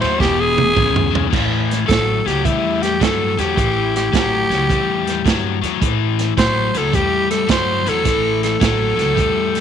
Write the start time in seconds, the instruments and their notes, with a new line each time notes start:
0.01 upright bass D#2, overdriven electric guitar A2 F#3, tenor saxophone C5, snare, ride
0.18 upright bass E1, overdriven electric guitar E2 B2, tenor saxophone G4, kick, snare
0.40 tenor saxophone G#4
0.58 high tom
0.73 overdriven electric guitar E2 C#3, kick
0.77 upright bass D2, mid tom
0.96 mid tom
1.10 upright bass B1, overdriven electric guitar E2 C#3
1.15 floor tom
1.30 upright bass A1, overdriven electric guitar A2 E3, kick, crash
1.34 snare
1.71 snare, closed hi-hat
1.86 upright bass A1, overdriven electric guitar A2 F#3, tenor saxophone A4, kick
1.90 snare, closed hi-hat
2.25 upright bass C#2, overdriven electric guitar A2 F#3, tenor saxophone G4, snare, closed hi-hat
2.44 upright bass E2, overdriven electric guitar A2 G3, tenor saxophone E4, kick, closed hi-hat
2.82 tenor saxophone G4, snare, closed hi-hat
2.99 upright bass G2, overdriven electric guitar A2 F#3, tenor saxophone A4, kick, snare, closed hi-hat
3.37 upright bass E2, overdriven electric guitar A2 F#3, tenor saxophone G4, snare, closed hi-hat
3.56 upright bass A1, overdriven electric guitar A2 E3, kick, closed hi-hat
3.96 tenor saxophone G4, snare, closed hi-hat
4.12 upright bass A1, overdriven electric guitar A2 F#3, kick, snare, closed hi-hat
4.49 upright bass C#2, overdriven electric guitar A2 F#3, snare, closed hi-hat
4.69 upright bass E2, overdriven electric guitar A2 G3, kick, closed hi-hat
5.07 snare, closed hi-hat
5.24 upright bass G2, overdriven electric guitar A2 F#3, kick, snare, closed hi-hat
5.61 upright bass E2, overdriven electric guitar A2 F#3, snare, closed hi-hat
5.80 upright bass A1, overdriven electric guitar A2 E3, kick, closed hi-hat
6.19 snare, closed hi-hat
6.37 upright bass A1, overdriven electric guitar A2 F#3, tenor saxophone C5, kick, snare, closed hi-hat
6.74 upright bass C#2, overdriven electric guitar A2 F#3, tenor saxophone A4, snare, closed hi-hat
6.92 upright bass E2, overdriven electric guitar A2 G3, tenor saxophone G4, kick, closed hi-hat
7.30 tenor saxophone A4, snare, closed hi-hat
7.47 upright bass G2, overdriven electric guitar A2 F#3, tenor saxophone C5, kick, snare, closed hi-hat
7.85 upright bass E2, overdriven electric guitar A2 F#3, tenor saxophone A4, snare, closed hi-hat
8.04 upright bass A1, overdriven electric guitar A2 E3, kick, snare, closed hi-hat
8.43 tenor saxophone A4, snare, closed hi-hat
8.60 upright bass A1, overdriven electric guitar A2 F#3, kick, snare, closed hi-hat
8.96 upright bass C#2, overdriven electric guitar A2 F#3, closed hi-hat
9.00 snare
9.14 upright bass E2, overdriven electric guitar A2 G3, kick, closed hi-hat
9.55 snare, closed hi-hat